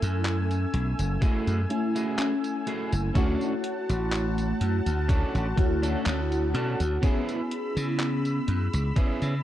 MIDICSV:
0, 0, Header, 1, 7, 480
1, 0, Start_track
1, 0, Key_signature, 3, "minor"
1, 0, Tempo, 967742
1, 1565, Time_signature, 4, 2, 24, 8
1, 4678, End_track
2, 0, Start_track
2, 0, Title_t, "Analog synth pad"
2, 0, Program_c, 0, 89
2, 0, Note_on_c, 0, 57, 80
2, 0, Note_on_c, 0, 80, 70
2, 0, Note_on_c, 0, 88, 87
2, 1545, Note_off_c, 0, 88, 0
2, 1546, Note_off_c, 0, 57, 0
2, 1546, Note_off_c, 0, 80, 0
2, 1566, Note_on_c, 0, 78, 77
2, 1566, Note_on_c, 0, 81, 94
2, 3466, Note_off_c, 0, 78, 0
2, 3467, Note_off_c, 0, 81, 0
2, 3486, Note_on_c, 0, 83, 74
2, 3487, Note_on_c, 0, 88, 90
2, 4678, Note_off_c, 0, 83, 0
2, 4678, Note_off_c, 0, 88, 0
2, 4678, End_track
3, 0, Start_track
3, 0, Title_t, "Clean electric guitar"
3, 0, Program_c, 1, 27
3, 601, Note_on_c, 1, 57, 87
3, 604, Note_on_c, 1, 64, 81
3, 604, Note_on_c, 1, 66, 79
3, 607, Note_on_c, 1, 68, 100
3, 786, Note_off_c, 1, 57, 0
3, 787, Note_off_c, 1, 64, 0
3, 788, Note_off_c, 1, 66, 0
3, 790, Note_off_c, 1, 68, 0
3, 967, Note_on_c, 1, 57, 89
3, 970, Note_on_c, 1, 64, 80
3, 972, Note_on_c, 1, 66, 80
3, 974, Note_on_c, 1, 68, 96
3, 1146, Note_off_c, 1, 57, 0
3, 1148, Note_off_c, 1, 64, 0
3, 1149, Note_off_c, 1, 66, 0
3, 1150, Note_off_c, 1, 68, 0
3, 1321, Note_on_c, 1, 57, 89
3, 1324, Note_on_c, 1, 64, 77
3, 1325, Note_on_c, 1, 66, 80
3, 1328, Note_on_c, 1, 68, 100
3, 1450, Note_off_c, 1, 57, 0
3, 1451, Note_off_c, 1, 64, 0
3, 1452, Note_off_c, 1, 66, 0
3, 1453, Note_off_c, 1, 68, 0
3, 1561, Note_on_c, 1, 61, 106
3, 1563, Note_on_c, 1, 62, 101
3, 1565, Note_on_c, 1, 66, 100
3, 1568, Note_on_c, 1, 69, 127
3, 1746, Note_off_c, 1, 61, 0
3, 1747, Note_off_c, 1, 62, 0
3, 1749, Note_off_c, 1, 66, 0
3, 1750, Note_off_c, 1, 69, 0
3, 2521, Note_on_c, 1, 61, 92
3, 2523, Note_on_c, 1, 62, 86
3, 2526, Note_on_c, 1, 66, 88
3, 2528, Note_on_c, 1, 69, 99
3, 2707, Note_off_c, 1, 61, 0
3, 2708, Note_off_c, 1, 62, 0
3, 2709, Note_off_c, 1, 66, 0
3, 2710, Note_off_c, 1, 69, 0
3, 2889, Note_on_c, 1, 61, 90
3, 2891, Note_on_c, 1, 62, 78
3, 2893, Note_on_c, 1, 66, 80
3, 2896, Note_on_c, 1, 69, 97
3, 3067, Note_off_c, 1, 61, 0
3, 3068, Note_off_c, 1, 62, 0
3, 3069, Note_off_c, 1, 66, 0
3, 3071, Note_off_c, 1, 69, 0
3, 3243, Note_on_c, 1, 61, 88
3, 3245, Note_on_c, 1, 62, 78
3, 3249, Note_on_c, 1, 66, 80
3, 3250, Note_on_c, 1, 69, 104
3, 3371, Note_off_c, 1, 61, 0
3, 3372, Note_off_c, 1, 62, 0
3, 3373, Note_off_c, 1, 66, 0
3, 3374, Note_off_c, 1, 69, 0
3, 3483, Note_on_c, 1, 59, 109
3, 3485, Note_on_c, 1, 61, 102
3, 3487, Note_on_c, 1, 64, 102
3, 3490, Note_on_c, 1, 68, 125
3, 3667, Note_off_c, 1, 59, 0
3, 3668, Note_off_c, 1, 61, 0
3, 3670, Note_off_c, 1, 64, 0
3, 3671, Note_off_c, 1, 68, 0
3, 4443, Note_on_c, 1, 59, 90
3, 4444, Note_on_c, 1, 61, 84
3, 4448, Note_on_c, 1, 64, 85
3, 4450, Note_on_c, 1, 68, 105
3, 4627, Note_off_c, 1, 59, 0
3, 4628, Note_off_c, 1, 61, 0
3, 4629, Note_off_c, 1, 64, 0
3, 4631, Note_off_c, 1, 68, 0
3, 4678, End_track
4, 0, Start_track
4, 0, Title_t, "FM electric piano"
4, 0, Program_c, 2, 5
4, 0, Control_c, 2, 64, 127
4, 0, Note_on_c, 2, 57, 79
4, 0, Note_on_c, 2, 61, 74
4, 0, Note_on_c, 2, 64, 72
4, 0, Note_on_c, 2, 80, 89
4, 813, Note_off_c, 2, 57, 0
4, 816, Note_off_c, 2, 61, 0
4, 818, Note_off_c, 2, 64, 0
4, 821, Note_off_c, 2, 80, 0
4, 841, Note_on_c, 2, 57, 80
4, 843, Note_on_c, 2, 61, 69
4, 845, Note_on_c, 2, 64, 73
4, 848, Note_on_c, 2, 80, 82
4, 1056, Note_off_c, 2, 57, 0
4, 1057, Note_off_c, 2, 61, 0
4, 1058, Note_off_c, 2, 64, 0
4, 1059, Note_off_c, 2, 80, 0
4, 1080, Note_on_c, 2, 57, 81
4, 1083, Note_on_c, 2, 61, 75
4, 1085, Note_on_c, 2, 64, 71
4, 1088, Note_on_c, 2, 80, 87
4, 1536, Note_off_c, 2, 57, 0
4, 1537, Note_off_c, 2, 61, 0
4, 1538, Note_off_c, 2, 64, 0
4, 1540, Note_off_c, 2, 80, 0
4, 1557, Note_on_c, 2, 57, 92
4, 1562, Note_on_c, 2, 73, 84
4, 1567, Note_on_c, 2, 64, 85
4, 1571, Note_on_c, 2, 66, 102
4, 1572, Control_c, 2, 64, 0
4, 1646, Control_c, 2, 64, 127
4, 2734, Note_off_c, 2, 57, 0
4, 2736, Note_off_c, 2, 73, 0
4, 2739, Note_off_c, 2, 64, 0
4, 2741, Note_off_c, 2, 66, 0
4, 2758, Note_on_c, 2, 57, 91
4, 2763, Note_on_c, 2, 73, 86
4, 2768, Note_on_c, 2, 64, 82
4, 2773, Note_on_c, 2, 66, 103
4, 3455, Note_off_c, 2, 57, 0
4, 3457, Note_off_c, 2, 73, 0
4, 3460, Note_off_c, 2, 64, 0
4, 3462, Note_off_c, 2, 66, 0
4, 3479, Note_on_c, 2, 59, 81
4, 3484, Note_on_c, 2, 61, 72
4, 3489, Note_on_c, 2, 64, 73
4, 3491, Control_c, 2, 64, 0
4, 3494, Note_on_c, 2, 68, 90
4, 3575, Control_c, 2, 64, 127
4, 4655, Note_off_c, 2, 59, 0
4, 4657, Note_off_c, 2, 61, 0
4, 4660, Note_off_c, 2, 64, 0
4, 4662, Note_off_c, 2, 68, 0
4, 4678, End_track
5, 0, Start_track
5, 0, Title_t, "Slap bass"
5, 0, Program_c, 3, 36
5, 12, Note_on_c, 3, 42, 108
5, 320, Note_off_c, 3, 42, 0
5, 365, Note_on_c, 3, 35, 93
5, 460, Note_off_c, 3, 35, 0
5, 490, Note_on_c, 3, 30, 92
5, 576, Note_off_c, 3, 30, 0
5, 730, Note_on_c, 3, 42, 83
5, 816, Note_off_c, 3, 42, 0
5, 1451, Note_on_c, 3, 30, 92
5, 1536, Note_off_c, 3, 30, 0
5, 1564, Note_on_c, 3, 38, 101
5, 1660, Note_off_c, 3, 38, 0
5, 1932, Note_on_c, 3, 33, 103
5, 2240, Note_off_c, 3, 33, 0
5, 2286, Note_on_c, 3, 42, 92
5, 2380, Note_off_c, 3, 42, 0
5, 2412, Note_on_c, 3, 38, 88
5, 2588, Note_off_c, 3, 38, 0
5, 2652, Note_on_c, 3, 33, 84
5, 2737, Note_off_c, 3, 33, 0
5, 2766, Note_on_c, 3, 38, 86
5, 2949, Note_off_c, 3, 38, 0
5, 3007, Note_on_c, 3, 38, 102
5, 3247, Note_off_c, 3, 38, 0
5, 3247, Note_on_c, 3, 47, 101
5, 3341, Note_off_c, 3, 47, 0
5, 3373, Note_on_c, 3, 38, 91
5, 3458, Note_off_c, 3, 38, 0
5, 3852, Note_on_c, 3, 49, 109
5, 4160, Note_off_c, 3, 49, 0
5, 4206, Note_on_c, 3, 42, 94
5, 4301, Note_off_c, 3, 42, 0
5, 4333, Note_on_c, 3, 37, 88
5, 4418, Note_off_c, 3, 37, 0
5, 4573, Note_on_c, 3, 49, 80
5, 4657, Note_off_c, 3, 49, 0
5, 4678, End_track
6, 0, Start_track
6, 0, Title_t, "Muted clean electric guitar strokes"
6, 8, Note_on_c, 9, 29, 33
6, 58, Note_off_c, 9, 29, 0
6, 362, Note_on_c, 9, 29, 33
6, 411, Note_off_c, 9, 29, 0
6, 1928, Note_on_c, 9, 29, 34
6, 1978, Note_off_c, 9, 29, 0
6, 2282, Note_on_c, 9, 29, 33
6, 2331, Note_off_c, 9, 29, 0
6, 3851, Note_on_c, 9, 29, 34
6, 3901, Note_off_c, 9, 29, 0
6, 4203, Note_on_c, 9, 29, 32
6, 4253, Note_off_c, 9, 29, 0
6, 4678, End_track
7, 0, Start_track
7, 0, Title_t, "Drums"
7, 11, Note_on_c, 9, 42, 54
7, 11, Note_on_c, 9, 54, 54
7, 61, Note_off_c, 9, 42, 0
7, 61, Note_off_c, 9, 54, 0
7, 125, Note_on_c, 9, 39, 127
7, 125, Note_on_c, 9, 42, 85
7, 125, Note_on_c, 9, 54, 47
7, 174, Note_off_c, 9, 39, 0
7, 174, Note_off_c, 9, 42, 0
7, 174, Note_off_c, 9, 54, 0
7, 251, Note_on_c, 9, 42, 41
7, 251, Note_on_c, 9, 54, 28
7, 301, Note_off_c, 9, 42, 0
7, 301, Note_off_c, 9, 54, 0
7, 365, Note_on_c, 9, 42, 86
7, 415, Note_off_c, 9, 42, 0
7, 491, Note_on_c, 9, 42, 55
7, 491, Note_on_c, 9, 54, 57
7, 540, Note_off_c, 9, 42, 0
7, 540, Note_off_c, 9, 54, 0
7, 604, Note_on_c, 9, 36, 119
7, 604, Note_on_c, 9, 42, 79
7, 604, Note_on_c, 9, 54, 46
7, 654, Note_off_c, 9, 36, 0
7, 654, Note_off_c, 9, 42, 0
7, 654, Note_off_c, 9, 54, 0
7, 731, Note_on_c, 9, 42, 38
7, 731, Note_on_c, 9, 54, 29
7, 780, Note_off_c, 9, 42, 0
7, 780, Note_off_c, 9, 54, 0
7, 844, Note_on_c, 9, 42, 86
7, 894, Note_off_c, 9, 42, 0
7, 971, Note_on_c, 9, 42, 55
7, 971, Note_on_c, 9, 54, 60
7, 1021, Note_off_c, 9, 42, 0
7, 1021, Note_off_c, 9, 54, 0
7, 1085, Note_on_c, 9, 39, 125
7, 1085, Note_on_c, 9, 42, 85
7, 1085, Note_on_c, 9, 54, 49
7, 1135, Note_off_c, 9, 39, 0
7, 1135, Note_off_c, 9, 42, 0
7, 1135, Note_off_c, 9, 54, 0
7, 1211, Note_on_c, 9, 42, 37
7, 1211, Note_on_c, 9, 54, 28
7, 1261, Note_off_c, 9, 42, 0
7, 1261, Note_off_c, 9, 54, 0
7, 1324, Note_on_c, 9, 42, 87
7, 1374, Note_off_c, 9, 42, 0
7, 1451, Note_on_c, 9, 42, 53
7, 1451, Note_on_c, 9, 54, 55
7, 1501, Note_off_c, 9, 42, 0
7, 1501, Note_off_c, 9, 54, 0
7, 1565, Note_on_c, 9, 36, 124
7, 1565, Note_on_c, 9, 42, 80
7, 1565, Note_on_c, 9, 54, 46
7, 1614, Note_off_c, 9, 36, 0
7, 1615, Note_off_c, 9, 42, 0
7, 1615, Note_off_c, 9, 54, 0
7, 1692, Note_on_c, 9, 54, 27
7, 1741, Note_off_c, 9, 54, 0
7, 1805, Note_on_c, 9, 42, 81
7, 1854, Note_off_c, 9, 42, 0
7, 1932, Note_on_c, 9, 42, 54
7, 1932, Note_on_c, 9, 54, 52
7, 1982, Note_off_c, 9, 42, 0
7, 1982, Note_off_c, 9, 54, 0
7, 2045, Note_on_c, 9, 39, 125
7, 2045, Note_on_c, 9, 42, 83
7, 2045, Note_on_c, 9, 54, 46
7, 2095, Note_off_c, 9, 39, 0
7, 2095, Note_off_c, 9, 42, 0
7, 2095, Note_off_c, 9, 54, 0
7, 2173, Note_on_c, 9, 42, 38
7, 2173, Note_on_c, 9, 54, 29
7, 2222, Note_off_c, 9, 42, 0
7, 2222, Note_off_c, 9, 54, 0
7, 2286, Note_on_c, 9, 42, 80
7, 2336, Note_off_c, 9, 42, 0
7, 2413, Note_on_c, 9, 42, 54
7, 2413, Note_on_c, 9, 54, 53
7, 2462, Note_off_c, 9, 42, 0
7, 2462, Note_off_c, 9, 54, 0
7, 2526, Note_on_c, 9, 36, 120
7, 2527, Note_on_c, 9, 42, 81
7, 2527, Note_on_c, 9, 54, 43
7, 2575, Note_off_c, 9, 36, 0
7, 2577, Note_off_c, 9, 42, 0
7, 2577, Note_off_c, 9, 54, 0
7, 2654, Note_on_c, 9, 42, 39
7, 2654, Note_on_c, 9, 54, 25
7, 2704, Note_off_c, 9, 42, 0
7, 2704, Note_off_c, 9, 54, 0
7, 2766, Note_on_c, 9, 36, 106
7, 2767, Note_on_c, 9, 42, 79
7, 2815, Note_off_c, 9, 36, 0
7, 2817, Note_off_c, 9, 42, 0
7, 2894, Note_on_c, 9, 42, 55
7, 2894, Note_on_c, 9, 54, 55
7, 2943, Note_off_c, 9, 42, 0
7, 2943, Note_off_c, 9, 54, 0
7, 3006, Note_on_c, 9, 39, 127
7, 3006, Note_on_c, 9, 42, 82
7, 3006, Note_on_c, 9, 54, 47
7, 3056, Note_off_c, 9, 39, 0
7, 3056, Note_off_c, 9, 42, 0
7, 3056, Note_off_c, 9, 54, 0
7, 3134, Note_on_c, 9, 42, 39
7, 3134, Note_on_c, 9, 54, 26
7, 3184, Note_off_c, 9, 42, 0
7, 3184, Note_off_c, 9, 54, 0
7, 3247, Note_on_c, 9, 42, 85
7, 3297, Note_off_c, 9, 42, 0
7, 3373, Note_on_c, 9, 42, 52
7, 3373, Note_on_c, 9, 54, 52
7, 3423, Note_off_c, 9, 42, 0
7, 3423, Note_off_c, 9, 54, 0
7, 3486, Note_on_c, 9, 36, 123
7, 3487, Note_on_c, 9, 42, 78
7, 3487, Note_on_c, 9, 54, 45
7, 3536, Note_off_c, 9, 36, 0
7, 3537, Note_off_c, 9, 42, 0
7, 3537, Note_off_c, 9, 54, 0
7, 3614, Note_on_c, 9, 42, 37
7, 3614, Note_on_c, 9, 54, 26
7, 3664, Note_off_c, 9, 42, 0
7, 3664, Note_off_c, 9, 54, 0
7, 3727, Note_on_c, 9, 42, 80
7, 3777, Note_off_c, 9, 42, 0
7, 3854, Note_on_c, 9, 42, 51
7, 3854, Note_on_c, 9, 54, 51
7, 3903, Note_off_c, 9, 42, 0
7, 3903, Note_off_c, 9, 54, 0
7, 3966, Note_on_c, 9, 39, 127
7, 3966, Note_on_c, 9, 42, 81
7, 3966, Note_on_c, 9, 54, 43
7, 4016, Note_off_c, 9, 39, 0
7, 4016, Note_off_c, 9, 42, 0
7, 4016, Note_off_c, 9, 54, 0
7, 4093, Note_on_c, 9, 42, 37
7, 4093, Note_on_c, 9, 54, 28
7, 4142, Note_off_c, 9, 42, 0
7, 4142, Note_off_c, 9, 54, 0
7, 4205, Note_on_c, 9, 42, 78
7, 4255, Note_off_c, 9, 42, 0
7, 4332, Note_on_c, 9, 42, 53
7, 4332, Note_on_c, 9, 54, 52
7, 4382, Note_off_c, 9, 42, 0
7, 4382, Note_off_c, 9, 54, 0
7, 4446, Note_on_c, 9, 36, 119
7, 4446, Note_on_c, 9, 42, 73
7, 4446, Note_on_c, 9, 54, 41
7, 4495, Note_off_c, 9, 42, 0
7, 4495, Note_off_c, 9, 54, 0
7, 4496, Note_off_c, 9, 36, 0
7, 4572, Note_on_c, 9, 42, 37
7, 4572, Note_on_c, 9, 54, 26
7, 4621, Note_off_c, 9, 42, 0
7, 4621, Note_off_c, 9, 54, 0
7, 4678, End_track
0, 0, End_of_file